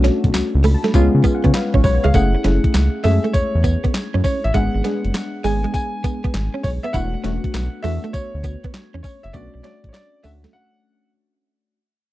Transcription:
Already playing: B1 A3 C#4 D4 F#4
0.04 C#4, snare, closed hi-hat
0.24 B1, kick, closed hi-hat
0.34 C#2, muted clean electric guitar stroke, snare, clap, closed hi-hat, tambourine
0.55 C#2
0.64 A3 B5, open hi-hat, tambourine
0.74 A5
0.84 A3, snare, closed hi-hat
0.94 C#2 G#3 B3 C#4 F4 G#5, muted clean electric guitar stroke, kick, closed hi-hat, tambourine
1.15 C#3
1.24 B3 G#4 F5, kick, closed hi-hat, tambourine
1.35 F#5
1.44 C#3 B3 F4 C#5, kick, closed hi-hat
1.54 B4 F5, snare, clap, closed hi-hat, tambourine
1.74 A1 C#4 F4 C#5, kick
1.84 B1 B4 C#5, muted clean electric guitar stroke, kick, open hi-hat, tambourine
1.94 C#5
2.04 C#2 G#3 B3 G#4 F5, closed hi-hat
2.14 F#1 A3 C#4 E4 G#4 F#5, kick, closed hi-hat, tambourine
2.35 muted clean electric guitar stroke
2.44 F#1 A3 C#4 E4 G#4, snare, closed hi-hat
2.64 kick, closed hi-hat
2.74 C#2, muted clean electric guitar stroke, snare, clap, closed hi-hat, tambourine
3.04 F#2 G#3 A3 C#4 E4 G#4 E5, open hi-hat, tambourine
3.11 A3
3.24 A3, closed hi-hat
3.33 E2 C#5, muted clean electric guitar stroke, kick, closed hi-hat, tambourine
3.55 E2
3.64 B3, kick, closed hi-hat, tambourine
3.84 B3, kick, closed hi-hat
3.94 muted clean electric guitar stroke, snare, clap, closed hi-hat, tambourine
4.14 F#2 C#4
4.24 C#4 C#5, kick, open hi-hat, tambourine
4.44 A1 E5, closed hi-hat
4.54 G#1 G#3 B3 D4 G#4 F#5, kick, closed hi-hat, tambourine
4.74 G#1, muted clean electric guitar stroke
4.84 G#3 B3 D4 G#4, snare, closed hi-hat
5.04 F#1, closed hi-hat
5.14 muted clean electric guitar stroke, snare, clap, closed hi-hat, tambourine
5.44 G#1 G#3 B3 D4 G#4 G#5, open hi-hat, tambourine
5.64 G#3, closed hi-hat
5.74 G#5, muted clean electric guitar stroke, kick, closed hi-hat, tambourine
6.04 B3, kick, closed hi-hat, tambourine
6.24 B3, kick, closed hi-hat
6.34 G#1, snare, clap, closed hi-hat, tambourine
6.54 C#4
6.63 B1 C#5, muted clean electric guitar stroke, kick, open hi-hat, tambourine
6.83 B3 E5, closed hi-hat
6.93 E1 A3 B3 D4 E4 F#4 F#5, kick, closed hi-hat, tambourine
7.14 muted clean electric guitar stroke
7.24 E1 A3 B3 C#4 D4 F#4, snare, closed hi-hat
7.44 kick, closed hi-hat
7.54 B1, muted clean electric guitar stroke, snare, clap, closed hi-hat, tambourine
7.83 E2 A3 B3 D4 F#4 E5, open hi-hat, tambourine
8.04 A3, closed hi-hat
8.13 D2 C#5, muted clean electric guitar stroke, kick, closed hi-hat, tambourine
8.34 D2
8.44 B3, kick, closed hi-hat, tambourine
8.64 B3, kick, closed hi-hat
8.74 muted clean electric guitar stroke, snare, clap, closed hi-hat, tambourine
8.94 E2 C#4
9.03 C#4 C#5, kick, open hi-hat, tambourine
9.23 F#1 E5, closed hi-hat
9.33 B1 A3 B3 C#4 D4 F#4 D5, kick, closed hi-hat, tambourine
9.54 B1, muted clean electric guitar stroke
9.63 A3 C#4 D4 F#4 D5, snare, closed hi-hat
9.84 A1, kick, closed hi-hat
9.89 C#5
9.93 D5, muted clean electric guitar stroke, snare, clap, closed hi-hat, tambourine
10.23 D2 A3 C#4 D4 F#4 E5, open hi-hat, tambourine
10.44 A3, snare, closed hi-hat
10.53 F#5

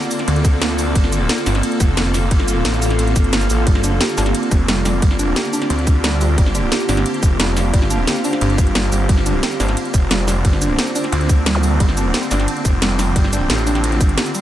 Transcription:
Already playing: D3 A#3 C4 F4 A4 D5
0.02 cabasa
0.11 open hi-hat, ride, cabasa
0.19 snare, closed hi-hat
0.28 D2, closed hi-hat, ride
0.36 closed hi-hat
0.45 kick, closed hi-hat, ride, cabasa
0.62 snare, closed hi-hat, ride
0.78 open hi-hat, ride, cabasa
0.95 G1, kick, closed hi-hat, ride
1.04 snare
1.12 closed hi-hat, ride, cabasa
1.29 snare, closed hi-hat, ride
1.38 cabasa
1.46 G1, snare, open hi-hat, ride, cabasa
1.55 snare, closed hi-hat
1.62 F5, closed hi-hat, ride
1.72 closed hi-hat
1.80 F1, kick, closed hi-hat, ride, cabasa
1.97 snare, closed hi-hat, ride
2.14 snare, open hi-hat, ride, cabasa
2.31 G1, kick, closed hi-hat, ride
2.40 snare
2.48 closed hi-hat, ride, cabasa
2.65 A1, snare, closed hi-hat, ride
2.73 cabasa
2.82 open hi-hat, ride, cabasa
2.90 snare, closed hi-hat
2.99 closed hi-hat, ride
3.07 closed hi-hat
3.16 G1, kick, closed hi-hat, ride, cabasa
3.24 closed hi-hat
3.33 snare, closed hi-hat, ride
3.41 closed hi-hat, cabasa
3.50 A1, open hi-hat, ride, cabasa
3.67 G1 G3 G4, kick, closed hi-hat, ride
3.75 snare
3.84 D4, closed hi-hat, ride, cabasa
4.01 G4, snare, closed hi-hat, ride
4.09 cabasa
4.18 G1 D4, snare, open hi-hat, ride, cabasa
4.26 snare, closed hi-hat
4.33 D5, closed hi-hat, ride
4.43 closed hi-hat
4.51 F1, kick, closed hi-hat, ride, cabasa
4.68 G3, snare, closed hi-hat, ride
4.85 G3, snare, open hi-hat, ride, cabasa
5.02 G1 G3, kick, closed hi-hat, ride
5.11 snare
5.19 D4, closed hi-hat, ride, cabasa
5.36 G4, snare, closed hi-hat, ride
5.45 cabasa
5.53 D4, open hi-hat, ride, cabasa
5.62 snare, closed hi-hat
5.70 D2, closed hi-hat, ride
5.79 closed hi-hat
5.87 kick, closed hi-hat, ride, cabasa
6.04 G3, snare, closed hi-hat, ride
6.21 G3, open hi-hat, ride, cabasa
6.38 G1 G3, kick, closed hi-hat, ride
6.46 snare
6.55 D4, closed hi-hat, ride, cabasa
6.72 G4, snare, closed hi-hat, ride
6.80 cabasa
6.88 G1 D4 C5, snare, open hi-hat, ride, cabasa
6.97 snare, closed hi-hat
7.04 F5, closed hi-hat, ride
7.14 closed hi-hat
7.23 F1, kick, closed hi-hat, ride, cabasa
7.40 G3, snare, closed hi-hat, ride
7.57 G3, snare, open hi-hat, ride, cabasa
7.73 G1 G3, kick, closed hi-hat, ride
7.82 snare
7.90 D4, closed hi-hat, ride, cabasa
8.07 G4, snare, closed hi-hat, ride
8.16 cabasa
8.24 D4, open hi-hat, ride, cabasa
8.33 snare, closed hi-hat
8.41 G1, closed hi-hat, ride
8.50 closed hi-hat
8.58 kick, closed hi-hat, ride, cabasa
8.67 closed hi-hat
8.75 G3, snare, closed hi-hat, ride
8.92 G1 G3, open hi-hat, ride, cabasa
9.09 G1 G3 C4, kick, closed hi-hat, ride
9.18 snare
9.26 D4, closed hi-hat, ride, cabasa
9.43 G4, snare, closed hi-hat, ride
9.51 cabasa
9.60 G1 D4, snare, open hi-hat, ride, cabasa
9.68 snare, closed hi-hat
9.76 D5, closed hi-hat, ride
9.85 closed hi-hat
9.94 F1, kick, closed hi-hat, ride, cabasa
10.11 G3, snare, closed hi-hat, ride
10.28 G3, snare, open hi-hat, ride, cabasa
10.45 G1 G3, kick, closed hi-hat, ride
10.53 snare
10.62 D4, closed hi-hat, ride, cabasa
10.79 G4, snare, closed hi-hat, ride
10.87 cabasa
10.95 D4, open hi-hat, ride, cabasa
11.04 snare, closed hi-hat
11.12 D2, closed hi-hat, ride
11.21 closed hi-hat
11.29 kick, closed hi-hat, ride, cabasa
11.46 G3, snare, closed hi-hat, ride
11.55 zap
11.63 G3, open hi-hat, ride, cabasa
11.80 G1 G3, kick, closed hi-hat, ride
11.89 snare
11.97 D4, closed hi-hat, ride, cabasa
12.14 G4, snare, closed hi-hat, ride
12.23 cabasa
12.31 G1 D4, snare, open hi-hat, ride, cabasa
12.40 snare, closed hi-hat
12.47 G5, closed hi-hat, ride
12.57 closed hi-hat
12.65 F1, kick, closed hi-hat, ride, cabasa
12.82 G3, snare, closed hi-hat, ride
12.99 G3, snare, open hi-hat, ride, cabasa
13.16 G1 G3, kick, closed hi-hat, ride
13.24 snare
13.33 D4, closed hi-hat, ride, cabasa
13.50 A1 G4, snare, closed hi-hat, ride
13.58 cabasa
13.67 D4, open hi-hat, ride, cabasa
13.75 snare, closed hi-hat
13.84 closed hi-hat, ride
13.92 closed hi-hat
14.01 G1, kick, closed hi-hat, ride, cabasa
14.09 closed hi-hat
14.18 G4, snare, closed hi-hat, ride
14.26 closed hi-hat, cabasa
14.35 G3, open hi-hat, ride, cabasa

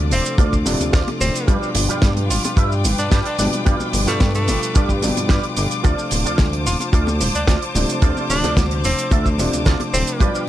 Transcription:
Already playing: D2 C3 F3 A3 D4 F4 A4 D5 D6
0.11 D1 C4, muted clean electric guitar stroke, open hi-hat, muted conga, shaker
0.25 closed hi-hat, shaker
0.38 D2 F4 A4 C5 D5, kick, closed hi-hat, muted conga, shaker
0.53 kick, shaker
0.65 D1 C3 F3 A3 D4, muted clean electric guitar stroke, open hi-hat, shaker
0.80 D2, closed hi-hat, muted conga, shaker
0.92 D2 F4 A4 C5 D5, kick, snare, closed hi-hat, shaker
1.08 closed hi-hat, muted conga
1.20 D1 C4, muted clean electric guitar stroke, open hi-hat, shaker
1.35 closed hi-hat, shaker
1.47 G2 B2 F3 G3 D4 F4 G4 B4 D5 G5, kick, closed hi-hat, muted conga, shaker
1.63 shaker
1.75 G1, open hi-hat, muted conga, shaker
1.88 G2 F4 G4 B4 D5, closed hi-hat, shaker
2.02 G2, kick, snare, closed hi-hat, high conga, low conga, shaker
2.17 closed hi-hat, muted conga
2.29 G1 F4, muted clean electric guitar stroke, open hi-hat, shaker
2.44 F4, closed hi-hat, muted conga, shaker
2.56 G2 F4 G4 B4 E5, kick, closed hi-hat, shaker
2.72 shaker
2.83 G1, muted clean electric guitar stroke, open hi-hat, muted conga, low conga, shaker
2.98 G2 D4, closed hi-hat, shaker
3.11 G2 D4 F4 G4 B4 D5, kick, snare, closed hi-hat, muted conga, shaker
3.25 D4, closed hi-hat
3.38 G1 B2 F3 G3 D4, muted clean electric guitar stroke, open hi-hat, low conga, shaker
3.53 closed hi-hat, muted conga, shaker
3.65 G2 B2 F3 G3 D4 F4 G4 B4 D5, kick, closed hi-hat, shaker
3.80 muted conga, shaker
3.93 G1, open hi-hat, shaker
4.07 G2 A3 F4 G4 B4 D5, snare, closed hi-hat, shaker
4.20 G2, kick, snare, closed hi-hat, muted conga, high conga, low conga, shaker
4.35 A3, closed hi-hat, shaker
4.47 G1, muted clean electric guitar stroke, open hi-hat, muted conga, shaker
4.63 closed hi-hat, shaker
4.74 G2 F4 G4 B4 D5, kick, closed hi-hat, shaker
4.89 kick, muted conga, shaker
5.02 G1 B2 F3 G3 D4, muted clean electric guitar stroke, open hi-hat, shaker
5.17 G2, closed hi-hat, muted conga, shaker
5.29 G2 F4 G4 B4 D5, kick, snare, closed hi-hat, shaker
5.43 closed hi-hat
5.56 G1, muted clean electric guitar stroke, open hi-hat, muted conga, shaker
5.71 closed hi-hat, shaker
5.83 D2 C3 F3 A3 D4 F4 A4 C5 D5 A5, kick, closed hi-hat, shaker
5.99 shaker
6.11 D1, open hi-hat, muted conga, shaker
6.25 D2 F4 A4 C5 D5, closed hi-hat, shaker
6.38 D2, kick, snare, closed hi-hat, muted conga, high conga, low conga, shaker
6.53 closed hi-hat
6.65 D1 F4, muted clean electric guitar stroke, open hi-hat, shaker
6.80 F4, closed hi-hat, muted conga, shaker
6.92 D2 F4 A4 C5 D5, kick, closed hi-hat, shaker
7.07 muted conga, shaker
7.20 D1, muted clean electric guitar stroke, open hi-hat, low conga, shaker
7.35 D2 D4, closed hi-hat, shaker
7.47 D2 D4 F4 A4 C5 D5, kick, snare, closed hi-hat, muted conga, shaker
7.62 closed hi-hat
7.74 D1 C3 F3 A3 D4, muted clean electric guitar stroke, open hi-hat, muted conga, low conga, shaker
7.89 closed hi-hat, shaker
8.02 D2 C3 F3 A3 D4 F4 A4 C5 D5, kick, closed hi-hat, shaker
8.17 muted conga, shaker
8.30 D1 D4, open hi-hat, shaker
8.43 D2 F4 A4 C5 D5, snare, closed hi-hat, muted conga, shaker
8.57 D2, kick, snare, closed hi-hat, high conga, low conga, shaker
8.71 closed hi-hat
8.83 D1 C4, muted clean electric guitar stroke, open hi-hat, muted conga, shaker
8.98 closed hi-hat, shaker
9.11 D2 F4 A4 C5 E5, kick, closed hi-hat, muted conga, shaker
9.26 kick, shaker
9.38 D1 C3 F3 A3 D4, muted clean electric guitar stroke, open hi-hat, shaker
9.53 D2, closed hi-hat, muted conga, shaker
9.65 D2 F4 A4 C5 D5, kick, snare, closed hi-hat, shaker
9.80 closed hi-hat, muted conga
9.93 D1 C4, muted clean electric guitar stroke, open hi-hat, shaker
10.07 closed hi-hat, shaker
10.20 G2 B2 F3 G3 D4 F4 G4 B4 D5 G5, kick, closed hi-hat, muted conga, shaker
10.35 shaker

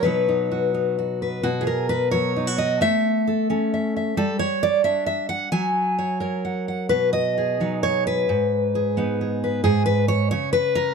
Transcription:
0.03 B2 F#3 D#4 F#4 B4
0.29 D#4
0.51 F#4
0.74 D#4
0.99 F#4
1.22 B4
1.43 B2 F#4
1.61 G#4
1.67 A#4
1.89 B4
2.11 F#3 C#5
2.36 D#4
2.47 F#4
2.58 D#5
2.81 A3 E5
3.27 A4
3.50 C#4 A4
3.74 E5
3.96 E5
4.17 G3 A4
4.39 C#5
4.63 D5
4.84 D4 E5
5.06 E5
5.29 F#5
5.52 F#3 G#5
5.99 C#5
6.20 A#4 C#5
6.45 F#5
6.68 F#5
6.89 B2 B4
7.13 D#5
7.38 G#4
7.60 F#3 D#4
7.83 C#5
8.07 B4
8.29 G#2
8.75 G#4
8.97 B3 D#4
9.21 G#4
9.44 B4
9.64 G#2 G#4
9.86 B4
10.08 C#5
10.31 C#3 C#5
10.53 B4
10.75 A#4

